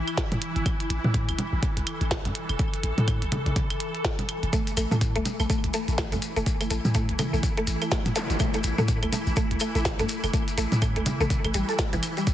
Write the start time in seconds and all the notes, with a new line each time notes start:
Already playing: E3 E4
0.08 closed hi-hat, claves
0.17 kick, snare, closed hi-hat
0.32 A2, closed hi-hat, low conga
0.42 closed hi-hat
0.56 G1, closed hi-hat
0.66 A4, kick, closed hi-hat, claves
0.80 closed hi-hat
0.90 A1, closed hi-hat
1.04 A2, low conga
1.14 kick, closed hi-hat
1.28 A1, closed hi-hat, claves
1.38 closed hi-hat, low conga
1.53 A1
1.63 kick, closed hi-hat
1.77 C2, closed hi-hat
1.87 closed hi-hat, claves
2.01 A1, closed hi-hat
2.11 kick, snare, closed hi-hat
2.25 A2, closed hi-hat, low conga
2.35 closed hi-hat
2.49 E1, closed hi-hat, claves
2.59 kick, closed hi-hat
2.74 closed hi-hat
2.83 A1, closed hi-hat
2.98 A2, closed hi-hat, low conga
3.08 kick, closed hi-hat, claves
3.22 A1, closed hi-hat
3.32 closed hi-hat, high conga, low conga
3.46 A1, closed hi-hat, high conga
3.56 kick, closed hi-hat
3.70 closed hi-hat, claves
3.80 closed hi-hat
3.95 closed hi-hat
4.04 kick, snare, closed hi-hat
4.19 closed hi-hat, low conga
4.29 closed hi-hat, claves
4.43 E1, closed hi-hat
4.53 E3 A3 E4, kick, closed hi-hat, maracas
4.67 closed hi-hat, maracas
4.77 A1 A3, closed hi-hat, claves, maracas
4.91 A2 A3, low conga, maracas
5.01 kick, closed hi-hat, maracas
5.16 A1 A3, closed hi-hat
5.25 closed hi-hat, low conga, maracas
5.40 A1 A3, claves, maracas
5.50 A3, kick, closed hi-hat, maracas
5.64 C2, closed hi-hat
5.74 A3, closed hi-hat, maracas
5.88 A1, closed hi-hat, maracas
5.98 A3, kick, snare, closed hi-hat, claves, maracas
6.12 A2 A3, closed hi-hat, low conga, maracas
6.22 closed hi-hat, maracas
6.36 E1 A3, closed hi-hat, maracas
6.46 kick, closed hi-hat, maracas
6.60 A3, closed hi-hat, claves, maracas
6.70 A1 A3, closed hi-hat, maracas
6.85 A2, low conga, maracas
6.94 A3, kick, closed hi-hat, maracas
7.09 A1, closed hi-hat
7.19 A3, closed hi-hat, high conga, low conga, claves, maracas
7.33 A1 A3, maracas
7.43 kick, closed hi-hat, maracas
7.57 A3, closed hi-hat
7.67 A1, closed hi-hat, maracas
7.82 A3, closed hi-hat, claves, maracas
7.91 A3, kick, snare, closed hi-hat, maracas
8.05 A2, closed hi-hat, low conga, maracas
8.15 A3, closed hi-hat, zap, maracas
8.30 G1, closed hi-hat, maracas
8.39 A3, kick, closed hi-hat, claves, maracas
8.54 A3, closed hi-hat, maracas
8.63 A1, closed hi-hat, maracas
8.78 A2 A3, low conga, maracas
8.88 kick, closed hi-hat, maracas
9.03 A1 A3, closed hi-hat, claves
9.12 A3, closed hi-hat, low conga, maracas
9.27 A1, maracas
9.36 A3, kick, closed hi-hat, maracas
9.51 C2, closed hi-hat
9.60 A3, closed hi-hat, claves, maracas
9.75 A1 A3, closed hi-hat, maracas
9.85 kick, snare, closed hi-hat, maracas
9.99 A2 A3, closed hi-hat, low conga, maracas
10.09 closed hi-hat, maracas
10.24 E1 A3, closed hi-hat, claves, maracas
10.33 A3, kick, closed hi-hat, maracas
10.48 closed hi-hat, maracas
10.58 A1 A3, closed hi-hat, maracas
10.72 A2, closed hi-hat, low conga, maracas
10.82 A3, kick, closed hi-hat, claves, maracas
10.96 A1 A3, closed hi-hat
11.06 closed hi-hat, high conga, low conga, maracas
11.20 A1 A3, high conga, maracas
11.30 kick, closed hi-hat, maracas
11.45 A1 A3, closed hi-hat, claves
11.54 A1 G3, closed hi-hat, maracas
11.69 A4, closed hi-hat, maracas
11.78 A3, kick, snare, closed hi-hat, maracas
11.93 A1 E3, closed hi-hat, low conga, maracas
12.03 closed hi-hat, claves, maracas
12.17 G3, closed hi-hat, maracas
12.27 kick, closed hi-hat, maracas